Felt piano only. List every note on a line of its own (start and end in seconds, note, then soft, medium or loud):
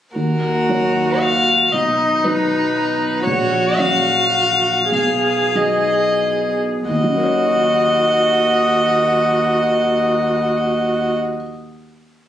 0.15 0.67 D#2 soft
0.69 1.69 F#3 soft
0.69 1.69 D#4 soft
0.69 1.69 C#5 soft
1.73 2.22 B1 soft
2.25 3.22 F#3 soft
2.25 3.22 D#4 soft
2.25 3.22 B4 soft
3.26 3.77 A#1 soft
3.78 4.89 F#3 soft
3.78 4.89 C#4 soft
3.78 4.89 C#5 soft
4.91 5.54 B1 soft
5.55 6.84 F#3 soft
5.55 6.85 D#4 soft
5.55 6.85 G#4 soft
6.89 11.13 D#2 soft
6.96 11.20 D#3 soft
7.04 11.28 F#3 soft
7.10 11.34 C#4 soft
7.17 11.41 A#4 soft
7.24 11.48 C#5 soft